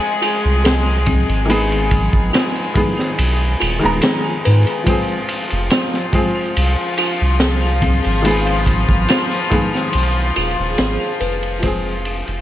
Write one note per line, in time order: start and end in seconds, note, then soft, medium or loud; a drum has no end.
0.00 1.51 F3 medium
0.00 1.47 G#3 medium
0.00 4.88 G#3 medium
0.00 1.50 C4 medium
0.00 0.18 F4 medium
0.00 1.51 G#4 loud
0.00 4.89 G#4 medium
0.22 0.60 F4 medium
0.22 ride medium
0.45 1.25 C2 medium
0.64 1.03 G#4 loud
0.64 snare loud
0.64 ride medium
0.64 tambourine medium
1.06 1.32 C4 medium
1.06 kick loud
1.06 ride medium
1.29 2.09 G#1 loud
1.29 ride soft
1.46 2.69 D#3 loud
1.46 2.70 G#3 medium
1.50 2.71 B3 medium
1.50 2.72 G#4 loud
1.50 ride medium
1.72 ride soft
1.91 kick medium
1.91 ride medium
2.13 2.31 G#1 loud
2.13 kick medium
2.33 3.56 F4 loud
2.33 snare loud
2.33 ride medium
2.33 tambourine medium
2.55 ride soft
2.74 2.86 D#3 medium
2.74 2.87 G#3 medium
2.74 2.88 B3 medium
2.74 2.88 G#4 medium
2.74 kick loud
2.74 ride medium
2.99 snare soft
3.19 3.56 B1 medium
3.19 ride loud
3.60 3.81 D#1 medium
3.60 3.98 F4 medium
3.60 ride medium
3.79 4.81 D#3 loud
3.79 4.82 G#3 medium
3.79 4.83 B3 medium
3.84 4.01 D#1 medium
3.84 4.84 A#5 loud
4.02 4.41 G#4 loud
4.02 snare loud
4.02 ride medium
4.02 tambourine medium
4.45 4.65 G#2 medium
4.45 4.70 B4 medium
4.45 ride medium
4.67 ride soft
4.83 6.07 F3 medium
4.83 12.41 F3 medium
4.83 6.08 G#3 medium
4.83 12.41 F4 medium
4.83 12.41 G#4 medium
4.83 kick loud
4.83 ride medium
4.88 6.09 C4 medium
4.88 6.10 G#4 loud
5.29 ride medium
5.50 5.70 F1 medium
5.50 ride soft
5.70 6.94 F4 loud
5.70 snare loud
5.70 ride medium
5.70 tambourine medium
5.94 snare soft
6.12 6.25 F3 medium
6.12 6.25 G#3 medium
6.12 6.26 C4 medium
6.12 6.26 G#4 loud
6.12 kick loud
6.12 ride medium
6.57 6.76 C2 medium
6.57 ride medium
6.98 7.36 F4 medium
6.98 ride medium
7.22 8.01 C2 medium
7.40 7.78 G#4 loud
7.40 snare loud
7.40 ride medium
7.40 tambourine medium
7.82 8.08 C4 medium
7.82 kick medium
7.82 ride medium
8.04 8.86 G#1 loud
8.04 ride soft
8.22 9.45 D#3 medium
8.22 9.46 G#3 medium
8.22 9.47 B3 medium
8.22 ride medium
8.28 9.48 G#4 loud
8.47 ride soft
8.66 kick medium
8.66 ride medium
8.89 9.07 G#1 loud
8.89 kick loud
9.09 10.32 F4 loud
9.09 snare loud
9.09 ride loud
9.09 tambourine medium
9.31 ride soft
9.50 9.62 D#3 medium
9.50 9.63 G#3 medium
9.50 9.64 B3 medium
9.50 9.64 G#4 loud
9.50 kick loud
9.50 ride medium
9.75 snare soft
9.93 10.32 B1 loud
9.93 ride medium
10.36 10.56 D#1 medium
10.36 10.75 F4 medium
10.36 ride medium
10.59 10.76 D#1 medium
10.78 10.98 G#1 medium
10.78 11.16 G#4 loud
10.78 snare loud
10.78 ride medium
10.78 tambourine medium
11.20 12.23 F1 loud
11.20 11.46 B4 medium
11.20 ride medium
11.43 ride soft
11.59 12.41 F3 loud
11.59 12.41 G#3 medium
11.59 ride medium
11.63 12.41 C4 loud
11.63 12.41 G#4 loud
11.63 kick loud
12.05 ride medium
12.28 12.41 F1 medium
12.28 ride soft